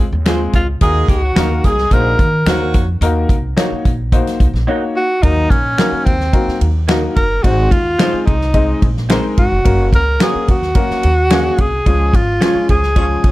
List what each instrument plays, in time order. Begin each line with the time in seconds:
0.12 upright bass D#2
0.25 upright piano G#3 C4 F4 G#4, clean electric guitar C4 F4 G#4 C5, finger snap, snare, closed hi-hat
0.53 upright bass C#2, tenor saxophone F4, kick, closed hi-hat
0.81 upright bass D#2, saxophone section G#3 G#4, upright piano A#3 D#4 F#4 A#4, tenor saxophone G#4, kick, closed hi-hat
1.08 upright bass C#2, tenor saxophone F#4, kick, closed hi-hat
1.23 saxophone section F#3 F#4
1.35 upright bass D#2, clean electric guitar A#3 D#4 F#4 A#4, saxophone section A#3 A#4, upright piano A#3 D#4 F#4 A#4, finger snap, snare, closed hi-hat
1.64 upright bass C2, saxophone section G#3 G#4, tenor saxophone G#4, kick, closed hi-hat
1.78 snare
1.91 upright bass A#1, upright piano A#3 D#4 F#4 C5, tenor saxophone A#4, kick, closed hi-hat
2.19 upright bass D#3, kick, closed hi-hat
2.46 upright bass D#2, saxophone section F#3 F#4, clean electric guitar A#3 D#4 F#4 A#4, upright piano A#3 D#4 F#4 C5, finger snap, snare, closed hi-hat
2.74 upright bass F2, kick, closed hi-hat
3.01 upright bass D#2, upright piano A#3 D#4 F#4 A#4, closed hi-hat
3.29 upright bass C2, kick, closed hi-hat
3.57 upright piano A#3 D#4 F#4 C#5, clean electric guitar A#3 D#4 F#4 A#4, finger snap, snare, closed hi-hat
3.71 muted upright bass stroke
3.85 upright bass A#1, kick, closed hi-hat
4.12 upright piano A#3 D#4 F#4 C5, kick, closed hi-hat
4.27 snare, closed hi-hat
4.40 upright bass C2, kick, closed hi-hat
4.53 upright bass A#1, snare
4.67 clean electric guitar A#3 D#4 F#4 A#4, upright piano A#3 D#4 F#4 C#5
4.97 tenor saxophone F#4
5.23 upright bass D#2, upright piano F#3 A#3 D#4 F#4 A#4, tenor saxophone D#4, kick, ride
5.50 upright bass A#1, tenor saxophone C#4, kick, ride
5.78 upright piano F#3 A#3 D#4 F#4 A#4, clean electric guitar A#3 D#4 F#4 A#4, finger snap, snare, ride
5.92 muted upright bass stroke
6.05 upright bass D#2, tenor saxophone C4, kick, ride
6.20 snare
6.33 upright piano F#3 A#3 D#4 F#4 A#4, kick, ride
6.48 muted upright bass stroke, snare
6.61 upright bass D#2, ride
6.88 upright piano F#3 A#3 D#4 F#4 A#4, clean electric guitar A#3 D#4 F#4 A#4, finger snap, snare, ride
7.16 upright bass F#1, tenor saxophone A#4, kick, ride
7.43 upright bass G#1, upright piano G#3 C4 D#4 G#4 C5, tenor saxophone F#4, kick, ride
7.71 tenor saxophone F4, kick, ride
7.98 upright piano G#3 C4 D#4 G#4 C5, clean electric guitar C4 D#4 G#4 C5, finger snap, snare, ride
8.13 muted upright bass stroke
8.21 tenor saxophone F4
8.26 upright bass C2, tenor saxophone D#4, kick, ride
8.41 snare
8.54 upright piano G#3 C4 D#4 G#4 D#5, kick, ride
8.82 upright bass A#1, kick, ride
8.97 snare
9.09 upright piano G#3 C4 D#4 G#4 A#4, clean electric guitar C4 D#4 G#4 C5, finger snap, snare, ride
9.37 upright bass G#1, tenor saxophone F#4, kick, ride
9.51 upright bass F1
9.64 upright bass F#1, upright piano F#3 A#3 C#4 F#4 A#4, kick, ride
9.93 upright bass C#2, tenor saxophone A#4, kick, ride
10.20 upright piano F#3 A#3 C#4 F#4 A#4, clean electric guitar C#4 F#4 A#4 C#5, tenor saxophone G#4, finger snap, snare, ride
10.35 muted upright bass stroke
10.48 upright bass D#2, tenor saxophone F#4, kick, ride
10.62 snare
10.75 upright piano F#3 A#3 C#4 F#4 A#4, kick, ride
10.90 muted upright bass stroke, snare
11.03 upright bass D#2, ride
11.30 upright piano F#3 A#3 C#4 F#4 G#4, clean electric guitar C#4 F#4 A#4 C#5, finger snap, snare, ride
11.58 upright bass C2, tenor saxophone G#4, kick, ride
11.86 upright bass C#2, upright piano F3 G#3 C#4 F4 G#4, kick, ride
12.13 upright bass G#1, tenor saxophone F4, kick, ride
12.40 upright piano F3 G#3 C#4 F4 G#4, clean electric guitar C#4 F4 G#4 C#5, finger snap, snare, ride
12.55 muted upright bass stroke
12.69 upright bass C#2, saxophone section F3 C#4 G#4, tenor saxophone G#4, kick, ride
12.83 snare
12.96 upright piano F3 G#3 C#4 F4 G#4, saxophone section F3 C#4 G#4, kick, ride
13.24 upright bass C2, saxophone section F3 C#4 G#4, kick, ride